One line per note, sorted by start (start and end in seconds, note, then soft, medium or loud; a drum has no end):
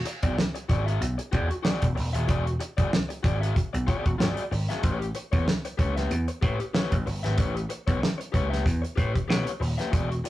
0.05 muted overdriven electric guitar stroke soft
0.05 closed hi-hat medium
0.23 0.35 B1 medium
0.23 0.36 F#4 medium
0.23 0.35 G#4 soft
0.23 0.35 D5 medium
0.23 kick medium
0.23 closed hi-hat medium
0.37 muted overdriven electric guitar stroke soft
0.37 snare loud
0.55 muted overdriven electric guitar stroke soft
0.55 closed hi-hat medium
0.69 0.96 G#1 medium
0.69 0.84 F#4 medium
0.69 0.84 G#4 medium
0.69 0.85 D5 medium
0.69 kick medium
0.69 closed hi-hat medium
0.86 0.99 F#4 medium
0.86 0.99 G#4 medium
0.86 0.98 E5 medium
0.86 closed hi-hat soft
1.01 1.16 B1 medium
1.01 closed hi-hat medium
1.18 muted overdriven electric guitar stroke soft
1.18 closed hi-hat medium
1.32 1.48 E2 loud
1.32 1.51 F#4 medium
1.32 1.49 G#4 medium
1.32 1.48 D5 loud
1.32 kick medium
1.32 closed hi-hat medium
1.49 muted overdriven electric guitar stroke soft
1.49 closed hi-hat soft
1.63 1.83 F#4 loud
1.63 1.83 G#4 medium
1.63 1.83 D5 loud
1.63 snare loud
1.82 1.95 E1 medium
1.82 kick medium
1.82 closed hi-hat medium
1.95 2.11 E1 medium
1.95 muted overdriven electric guitar stroke soft
1.95 open hi-hat medium
2.13 2.26 D#1 medium
2.13 2.26 F#4 medium
2.13 2.26 G#4 medium
2.13 2.26 E5 medium
2.13 closed hi-hat medium
2.28 2.55 E1 loud
2.28 2.47 F#4 medium
2.28 2.46 G#4 medium
2.28 2.45 D5 medium
2.28 kick loud
2.28 closed hi-hat medium
2.46 muted overdriven electric guitar stroke soft
2.46 closed hi-hat soft
2.60 muted overdriven electric guitar stroke soft
2.60 closed hi-hat medium
2.77 2.90 G1 medium
2.77 2.90 F#4 soft
2.77 2.90 G#4 soft
2.77 2.89 D5 medium
2.77 kick medium
2.77 closed hi-hat medium
2.92 muted overdriven electric guitar stroke soft
2.92 snare loud
3.09 muted overdriven electric guitar stroke soft
3.09 closed hi-hat medium
3.23 3.51 G#1 medium
3.23 3.38 F#4 medium
3.23 3.39 G#4 medium
3.23 3.39 D5 medium
3.23 kick loud
3.23 closed hi-hat medium
3.41 3.54 F#4 soft
3.41 3.54 G#4 medium
3.41 3.53 E5 medium
3.41 closed hi-hat medium
3.56 kick medium
3.56 closed hi-hat medium
3.73 3.85 B1 medium
3.73 muted overdriven electric guitar stroke soft
3.73 closed hi-hat medium
3.87 4.09 F#4 medium
3.87 4.05 G#4 loud
3.87 4.04 D5 loud
3.87 kick medium
3.87 closed hi-hat medium
4.05 4.17 E1 medium
4.05 muted overdriven electric guitar stroke soft
4.05 kick medium
4.05 closed hi-hat soft
4.18 4.35 G1 medium
4.18 4.41 F#4 medium
4.18 4.41 G#4 medium
4.18 4.42 D5 medium
4.18 snare loud
4.37 closed hi-hat medium
4.51 4.66 G#1 medium
4.51 muted overdriven electric guitar stroke medium
4.51 open hi-hat medium
4.69 4.82 F#4 medium
4.69 4.81 G#4 medium
4.69 4.81 E5 medium
4.69 snare soft
4.69 closed hi-hat medium
4.83 5.10 A1 loud
4.83 5.04 G4 medium
4.83 5.00 B4 medium
4.83 4.98 C#5 loud
4.83 kick loud
4.83 closed hi-hat loud
5.00 muted overdriven electric guitar stroke soft
5.00 closed hi-hat soft
5.15 muted overdriven electric guitar stroke soft
5.15 closed hi-hat medium
5.32 5.45 E2 medium
5.32 5.45 G4 medium
5.32 5.45 B4 medium
5.32 5.44 C#5 medium
5.32 kick medium
5.32 closed hi-hat medium
5.46 muted overdriven electric guitar stroke soft
5.46 snare loud
5.65 muted overdriven electric guitar stroke soft
5.65 closed hi-hat medium
5.78 6.05 C#2 medium
5.78 5.93 G4 medium
5.78 5.94 B4 medium
5.78 5.94 C#5 medium
5.78 kick medium
5.78 closed hi-hat medium
5.96 6.09 G4 soft
5.96 6.09 B4 medium
5.96 6.08 E5 medium
5.96 snare soft
5.96 closed hi-hat medium
6.11 6.26 E2 medium
6.11 closed hi-hat medium
6.28 muted overdriven electric guitar stroke soft
6.28 closed hi-hat medium
6.42 6.57 A2 loud
6.42 6.61 G4 medium
6.42 6.60 B4 loud
6.42 6.58 C#5 loud
6.42 kick medium
6.42 closed hi-hat medium
6.60 muted overdriven electric guitar stroke soft
6.60 closed hi-hat soft
6.74 6.93 G4 medium
6.74 6.93 B4 medium
6.74 6.94 C#5 medium
6.74 snare loud
6.92 7.04 A1 medium
6.92 kick medium
6.92 closed hi-hat medium
7.06 7.21 G1 medium
7.06 muted overdriven electric guitar stroke soft
7.06 open hi-hat medium
7.23 7.36 G#1 medium
7.23 7.36 G4 medium
7.23 7.36 B4 medium
7.23 7.35 E5 medium
7.23 snare soft
7.23 closed hi-hat medium
7.37 7.65 A1 loud
7.37 7.56 G4 medium
7.37 7.56 B4 medium
7.37 7.54 C#5 medium
7.37 kick loud
7.37 closed hi-hat medium
7.56 muted overdriven electric guitar stroke soft
7.56 closed hi-hat soft
7.69 muted overdriven electric guitar stroke soft
7.69 closed hi-hat medium
7.87 7.99 B1 medium
7.87 7.99 G4 medium
7.87 8.00 B4 medium
7.87 7.99 C#5 medium
7.87 kick loud
7.87 closed hi-hat medium
8.00 muted overdriven electric guitar stroke soft
8.00 snare loud
8.18 muted overdriven electric guitar stroke soft
8.18 closed hi-hat medium
8.32 8.61 C#2 loud
8.32 8.48 G4 medium
8.32 8.48 B4 medium
8.32 8.49 C#5 medium
8.32 kick medium
8.32 closed hi-hat medium
8.50 8.63 G4 soft
8.50 8.63 B4 medium
8.50 8.62 E5 medium
8.50 snare soft
8.50 closed hi-hat medium
8.66 8.81 E2 loud
8.66 kick medium
8.66 closed hi-hat medium
8.82 muted overdriven electric guitar stroke soft
8.82 closed hi-hat medium
8.96 9.12 A2 loud
8.96 9.15 G4 medium
8.96 9.14 B4 medium
8.96 9.13 C#5 medium
8.96 kick medium
8.96 closed hi-hat medium
9.14 muted overdriven electric guitar stroke soft
9.14 kick medium
9.14 closed hi-hat medium
9.28 9.44 B2 loud
9.28 9.47 G4 medium
9.28 9.48 B4 medium
9.28 9.48 C#5 medium
9.28 snare loud
9.47 closed hi-hat medium
9.60 9.75 D#1 medium
9.60 muted overdriven electric guitar stroke soft
9.60 open hi-hat medium
9.78 9.91 G4 medium
9.78 9.90 B4 medium
9.78 9.90 E5 medium
9.78 snare soft
9.78 closed hi-hat medium
9.92 10.19 E1 loud
9.92 10.11 F#4 medium
9.92 10.10 G#4 medium
9.92 10.09 D5 medium
9.92 kick loud
9.92 closed hi-hat medium
10.10 muted overdriven electric guitar stroke soft
10.10 closed hi-hat soft
10.24 muted overdriven electric guitar stroke soft
10.24 closed hi-hat medium